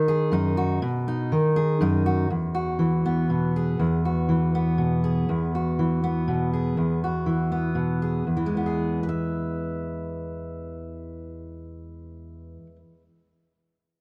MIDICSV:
0, 0, Header, 1, 2, 480
1, 0, Start_track
1, 0, Key_signature, 4, "major"
1, 0, Tempo, 497512
1, 784, Time_signature, 3, 2, 24, 8
1, 13515, End_track
2, 0, Start_track
2, 0, Title_t, "Steel-string acoustic guitar"
2, 0, Program_c, 0, 25
2, 0, Note_on_c, 0, 51, 74
2, 0, Note_on_c, 0, 63, 67
2, 80, Note_on_c, 0, 68, 68
2, 304, Note_off_c, 0, 63, 0
2, 304, Note_on_c, 0, 42, 67
2, 316, Note_on_c, 0, 63, 60
2, 549, Note_off_c, 0, 68, 0
2, 553, Note_on_c, 0, 66, 68
2, 755, Note_off_c, 0, 42, 0
2, 759, Note_off_c, 0, 66, 0
2, 760, Note_off_c, 0, 63, 0
2, 761, Note_off_c, 0, 51, 0
2, 792, Note_on_c, 0, 47, 75
2, 1041, Note_on_c, 0, 63, 61
2, 1266, Note_off_c, 0, 47, 0
2, 1272, Note_on_c, 0, 51, 67
2, 1507, Note_on_c, 0, 68, 63
2, 1740, Note_off_c, 0, 63, 0
2, 1743, Note_on_c, 0, 42, 68
2, 1751, Note_on_c, 0, 63, 58
2, 1983, Note_off_c, 0, 68, 0
2, 1987, Note_on_c, 0, 66, 66
2, 2192, Note_off_c, 0, 42, 0
2, 2194, Note_off_c, 0, 66, 0
2, 2196, Note_off_c, 0, 51, 0
2, 2196, Note_off_c, 0, 63, 0
2, 2222, Note_on_c, 0, 40, 61
2, 2456, Note_on_c, 0, 66, 51
2, 2691, Note_on_c, 0, 52, 59
2, 2948, Note_on_c, 0, 59, 52
2, 3182, Note_on_c, 0, 47, 51
2, 3416, Note_off_c, 0, 66, 0
2, 3437, Note_on_c, 0, 68, 49
2, 3631, Note_off_c, 0, 47, 0
2, 3657, Note_off_c, 0, 40, 0
2, 3661, Note_on_c, 0, 40, 64
2, 3906, Note_off_c, 0, 68, 0
2, 3910, Note_on_c, 0, 66, 48
2, 3939, Note_off_c, 0, 52, 0
2, 4137, Note_on_c, 0, 52, 53
2, 4385, Note_off_c, 0, 59, 0
2, 4389, Note_on_c, 0, 59, 52
2, 4612, Note_on_c, 0, 47, 51
2, 4857, Note_off_c, 0, 66, 0
2, 4861, Note_on_c, 0, 68, 47
2, 5066, Note_off_c, 0, 47, 0
2, 5099, Note_off_c, 0, 40, 0
2, 5103, Note_on_c, 0, 40, 61
2, 5349, Note_off_c, 0, 68, 0
2, 5353, Note_on_c, 0, 66, 45
2, 5382, Note_off_c, 0, 52, 0
2, 5586, Note_on_c, 0, 52, 53
2, 5820, Note_off_c, 0, 59, 0
2, 5824, Note_on_c, 0, 59, 50
2, 6057, Note_on_c, 0, 47, 49
2, 6301, Note_off_c, 0, 66, 0
2, 6305, Note_on_c, 0, 68, 46
2, 6510, Note_off_c, 0, 47, 0
2, 6529, Note_off_c, 0, 40, 0
2, 6533, Note_on_c, 0, 40, 55
2, 6787, Note_off_c, 0, 68, 0
2, 6790, Note_on_c, 0, 66, 42
2, 6819, Note_off_c, 0, 52, 0
2, 7007, Note_on_c, 0, 52, 47
2, 7241, Note_off_c, 0, 59, 0
2, 7253, Note_on_c, 0, 59, 47
2, 7477, Note_on_c, 0, 47, 41
2, 7736, Note_off_c, 0, 66, 0
2, 7740, Note_on_c, 0, 68, 42
2, 7941, Note_off_c, 0, 47, 0
2, 7947, Note_off_c, 0, 52, 0
2, 7953, Note_off_c, 0, 68, 0
2, 7965, Note_off_c, 0, 40, 0
2, 7976, Note_on_c, 0, 40, 43
2, 8073, Note_on_c, 0, 52, 43
2, 8164, Note_on_c, 0, 56, 42
2, 8256, Note_off_c, 0, 59, 0
2, 8267, Note_on_c, 0, 59, 44
2, 8357, Note_on_c, 0, 68, 37
2, 8710, Note_off_c, 0, 59, 0
2, 8714, Note_on_c, 0, 71, 50
2, 8763, Note_off_c, 0, 68, 0
2, 8767, Note_on_c, 0, 76, 52
2, 12120, Note_off_c, 0, 40, 0
2, 12217, Note_off_c, 0, 52, 0
2, 12308, Note_off_c, 0, 56, 0
2, 12320, Note_off_c, 0, 71, 0
2, 12347, Note_off_c, 0, 76, 0
2, 13515, End_track
0, 0, End_of_file